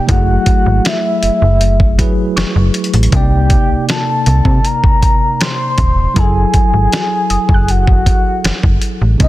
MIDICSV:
0, 0, Header, 1, 6, 480
1, 0, Start_track
1, 0, Tempo, 759494
1, 55, Time_signature, 4, 2, 24, 8
1, 5868, End_track
2, 0, Start_track
2, 0, Title_t, "Synth pluck"
2, 0, Program_c, 0, 84
2, 0, Note_on_c, 0, 82, 59
2, 0, Note_on_c, 0, 84, 58
2, 0, Note_on_c, 0, 86, 48
2, 270, Note_off_c, 0, 82, 0
2, 406, Note_off_c, 0, 84, 0
2, 541, Note_off_c, 0, 86, 0
2, 1494, Note_on_c, 0, 85, 57
2, 2189, Note_off_c, 0, 85, 0
2, 4615, Note_on_c, 0, 87, 57
2, 4767, Note_on_c, 0, 90, 56
2, 5868, Note_off_c, 0, 87, 0
2, 5868, Note_off_c, 0, 90, 0
2, 5868, End_track
3, 0, Start_track
3, 0, Title_t, "Soft synth lead"
3, 0, Program_c, 1, 80
3, 67, Note_on_c, 1, 78, 113
3, 549, Note_on_c, 1, 76, 94
3, 558, Note_off_c, 1, 78, 0
3, 1502, Note_off_c, 1, 76, 0
3, 1987, Note_on_c, 1, 79, 103
3, 2436, Note_off_c, 1, 79, 0
3, 2466, Note_on_c, 1, 81, 105
3, 2945, Note_on_c, 1, 82, 111
3, 2955, Note_off_c, 1, 81, 0
3, 3420, Note_off_c, 1, 82, 0
3, 3426, Note_on_c, 1, 84, 114
3, 3907, Note_on_c, 1, 80, 118
3, 3916, Note_off_c, 1, 84, 0
3, 4868, Note_on_c, 1, 78, 97
3, 4877, Note_off_c, 1, 80, 0
3, 5582, Note_off_c, 1, 78, 0
3, 5829, Note_on_c, 1, 75, 97
3, 5868, Note_off_c, 1, 75, 0
3, 5868, End_track
4, 0, Start_track
4, 0, Title_t, "Tine electric piano"
4, 0, Program_c, 2, 4
4, 0, Control_c, 2, 64, 127
4, 0, Note_on_c, 2, 48, 52
4, 0, Note_on_c, 2, 74, 56
4, 43, Note_on_c, 2, 54, 64
4, 56, Note_on_c, 2, 64, 60
4, 63, Control_c, 2, 64, 0
4, 64, Note_off_c, 2, 74, 0
4, 66, Note_off_c, 2, 48, 0
4, 69, Note_on_c, 2, 68, 57
4, 81, Note_on_c, 2, 57, 69
4, 185, Control_c, 2, 64, 127
4, 1225, Note_off_c, 2, 54, 0
4, 1232, Note_off_c, 2, 64, 0
4, 1238, Note_off_c, 2, 68, 0
4, 1245, Note_off_c, 2, 57, 0
4, 1251, Note_on_c, 2, 54, 64
4, 1257, Note_on_c, 2, 64, 55
4, 1264, Note_on_c, 2, 68, 57
4, 1270, Note_on_c, 2, 71, 69
4, 1961, Note_on_c, 2, 48, 63
4, 1973, Note_off_c, 2, 54, 0
4, 1974, Note_on_c, 2, 58, 59
4, 1976, Note_off_c, 2, 64, 0
4, 1980, Note_off_c, 2, 68, 0
4, 1983, Note_off_c, 2, 71, 0
4, 1983, Control_c, 2, 64, 0
4, 1987, Note_on_c, 2, 62, 48
4, 1999, Note_on_c, 2, 74, 73
4, 2022, Note_off_c, 2, 62, 0
4, 2028, Note_on_c, 2, 63, 56
4, 2085, Control_c, 2, 64, 127
4, 3863, Note_off_c, 2, 48, 0
4, 3869, Note_off_c, 2, 58, 0
4, 3882, Note_off_c, 2, 74, 0
4, 3882, Note_on_c, 2, 54, 63
4, 3895, Note_on_c, 2, 64, 59
4, 3896, Note_off_c, 2, 63, 0
4, 3902, Control_c, 2, 64, 0
4, 3907, Note_on_c, 2, 68, 57
4, 3920, Note_on_c, 2, 69, 76
4, 4024, Control_c, 2, 64, 127
4, 5783, Note_off_c, 2, 54, 0
4, 5790, Note_off_c, 2, 64, 0
4, 5796, Note_off_c, 2, 68, 0
4, 5802, Note_off_c, 2, 69, 0
4, 5802, Note_on_c, 2, 48, 65
4, 5815, Note_on_c, 2, 58, 63
4, 5822, Control_c, 2, 64, 0
4, 5828, Note_on_c, 2, 62, 49
4, 5840, Note_on_c, 2, 75, 71
4, 5862, Note_off_c, 2, 62, 0
4, 5868, Note_off_c, 2, 48, 0
4, 5868, Note_off_c, 2, 58, 0
4, 5868, Note_off_c, 2, 75, 0
4, 5868, End_track
5, 0, Start_track
5, 0, Title_t, "FM bass"
5, 0, Program_c, 3, 39
5, 56, Note_on_c, 3, 30, 115
5, 242, Note_off_c, 3, 30, 0
5, 418, Note_on_c, 3, 32, 84
5, 510, Note_off_c, 3, 32, 0
5, 777, Note_on_c, 3, 30, 50
5, 825, Note_off_c, 3, 30, 0
5, 897, Note_on_c, 3, 30, 89
5, 1268, Note_off_c, 3, 30, 0
5, 1497, Note_on_c, 3, 30, 47
5, 1544, Note_off_c, 3, 30, 0
5, 1616, Note_on_c, 3, 30, 96
5, 1709, Note_off_c, 3, 30, 0
5, 1856, Note_on_c, 3, 33, 90
5, 1949, Note_off_c, 3, 33, 0
5, 1976, Note_on_c, 3, 36, 116
5, 2255, Note_off_c, 3, 36, 0
5, 2336, Note_on_c, 3, 36, 49
5, 2384, Note_off_c, 3, 36, 0
5, 2696, Note_on_c, 3, 36, 90
5, 2789, Note_off_c, 3, 36, 0
5, 2813, Note_on_c, 3, 48, 97
5, 2907, Note_off_c, 3, 48, 0
5, 3654, Note_on_c, 3, 27, 96
5, 3841, Note_off_c, 3, 27, 0
5, 3895, Note_on_c, 3, 30, 113
5, 4082, Note_off_c, 3, 30, 0
5, 4256, Note_on_c, 3, 32, 81
5, 4349, Note_off_c, 3, 32, 0
5, 4616, Note_on_c, 3, 30, 50
5, 4664, Note_off_c, 3, 30, 0
5, 4733, Note_on_c, 3, 30, 90
5, 5106, Note_off_c, 3, 30, 0
5, 5336, Note_on_c, 3, 30, 48
5, 5384, Note_off_c, 3, 30, 0
5, 5457, Note_on_c, 3, 30, 96
5, 5550, Note_off_c, 3, 30, 0
5, 5697, Note_on_c, 3, 33, 86
5, 5789, Note_off_c, 3, 33, 0
5, 5816, Note_on_c, 3, 36, 107
5, 5868, Note_off_c, 3, 36, 0
5, 5868, End_track
6, 0, Start_track
6, 0, Title_t, "Drums"
6, 54, Note_on_c, 9, 42, 66
6, 55, Note_on_c, 9, 36, 119
6, 117, Note_off_c, 9, 42, 0
6, 118, Note_off_c, 9, 36, 0
6, 292, Note_on_c, 9, 42, 69
6, 294, Note_on_c, 9, 36, 87
6, 355, Note_off_c, 9, 42, 0
6, 357, Note_off_c, 9, 36, 0
6, 537, Note_on_c, 9, 42, 70
6, 543, Note_on_c, 9, 38, 108
6, 601, Note_off_c, 9, 42, 0
6, 606, Note_off_c, 9, 38, 0
6, 775, Note_on_c, 9, 42, 76
6, 838, Note_off_c, 9, 42, 0
6, 1016, Note_on_c, 9, 42, 66
6, 1079, Note_off_c, 9, 42, 0
6, 1137, Note_on_c, 9, 36, 94
6, 1200, Note_off_c, 9, 36, 0
6, 1256, Note_on_c, 9, 36, 86
6, 1257, Note_on_c, 9, 42, 73
6, 1319, Note_off_c, 9, 36, 0
6, 1320, Note_off_c, 9, 42, 0
6, 1497, Note_on_c, 9, 42, 72
6, 1502, Note_on_c, 9, 38, 112
6, 1560, Note_off_c, 9, 42, 0
6, 1565, Note_off_c, 9, 38, 0
6, 1732, Note_on_c, 9, 46, 74
6, 1735, Note_on_c, 9, 42, 43
6, 1795, Note_off_c, 9, 42, 0
6, 1795, Note_off_c, 9, 46, 0
6, 1795, Note_on_c, 9, 42, 51
6, 1855, Note_off_c, 9, 42, 0
6, 1855, Note_on_c, 9, 42, 64
6, 1915, Note_off_c, 9, 42, 0
6, 1915, Note_on_c, 9, 42, 66
6, 1974, Note_off_c, 9, 42, 0
6, 1974, Note_on_c, 9, 42, 64
6, 1975, Note_on_c, 9, 36, 120
6, 2037, Note_off_c, 9, 42, 0
6, 2038, Note_off_c, 9, 36, 0
6, 2211, Note_on_c, 9, 42, 67
6, 2213, Note_on_c, 9, 36, 88
6, 2274, Note_off_c, 9, 42, 0
6, 2276, Note_off_c, 9, 36, 0
6, 2456, Note_on_c, 9, 42, 68
6, 2462, Note_on_c, 9, 38, 115
6, 2519, Note_off_c, 9, 42, 0
6, 2525, Note_off_c, 9, 38, 0
6, 2694, Note_on_c, 9, 42, 74
6, 2757, Note_off_c, 9, 42, 0
6, 2813, Note_on_c, 9, 36, 101
6, 2876, Note_off_c, 9, 36, 0
6, 2936, Note_on_c, 9, 42, 65
6, 2999, Note_off_c, 9, 42, 0
6, 3056, Note_on_c, 9, 36, 93
6, 3120, Note_off_c, 9, 36, 0
6, 3175, Note_on_c, 9, 36, 88
6, 3176, Note_on_c, 9, 42, 76
6, 3239, Note_off_c, 9, 36, 0
6, 3240, Note_off_c, 9, 42, 0
6, 3417, Note_on_c, 9, 42, 74
6, 3422, Note_on_c, 9, 38, 109
6, 3480, Note_off_c, 9, 42, 0
6, 3485, Note_off_c, 9, 38, 0
6, 3651, Note_on_c, 9, 42, 66
6, 3654, Note_on_c, 9, 36, 94
6, 3714, Note_off_c, 9, 42, 0
6, 3717, Note_off_c, 9, 36, 0
6, 3894, Note_on_c, 9, 42, 67
6, 3895, Note_on_c, 9, 36, 117
6, 3957, Note_off_c, 9, 42, 0
6, 3958, Note_off_c, 9, 36, 0
6, 4131, Note_on_c, 9, 42, 69
6, 4133, Note_on_c, 9, 36, 87
6, 4194, Note_off_c, 9, 42, 0
6, 4196, Note_off_c, 9, 36, 0
6, 4376, Note_on_c, 9, 42, 68
6, 4382, Note_on_c, 9, 38, 115
6, 4439, Note_off_c, 9, 42, 0
6, 4445, Note_off_c, 9, 38, 0
6, 4614, Note_on_c, 9, 42, 75
6, 4677, Note_off_c, 9, 42, 0
6, 4733, Note_on_c, 9, 36, 96
6, 4796, Note_off_c, 9, 36, 0
6, 4856, Note_on_c, 9, 42, 66
6, 4920, Note_off_c, 9, 42, 0
6, 4977, Note_on_c, 9, 36, 93
6, 5040, Note_off_c, 9, 36, 0
6, 5096, Note_on_c, 9, 36, 84
6, 5097, Note_on_c, 9, 42, 74
6, 5159, Note_off_c, 9, 36, 0
6, 5160, Note_off_c, 9, 42, 0
6, 5337, Note_on_c, 9, 42, 75
6, 5342, Note_on_c, 9, 38, 113
6, 5400, Note_off_c, 9, 42, 0
6, 5405, Note_off_c, 9, 38, 0
6, 5457, Note_on_c, 9, 36, 100
6, 5520, Note_off_c, 9, 36, 0
6, 5571, Note_on_c, 9, 42, 66
6, 5634, Note_off_c, 9, 42, 0
6, 5814, Note_on_c, 9, 42, 65
6, 5815, Note_on_c, 9, 36, 122
6, 5868, Note_off_c, 9, 36, 0
6, 5868, Note_off_c, 9, 42, 0
6, 5868, End_track
0, 0, End_of_file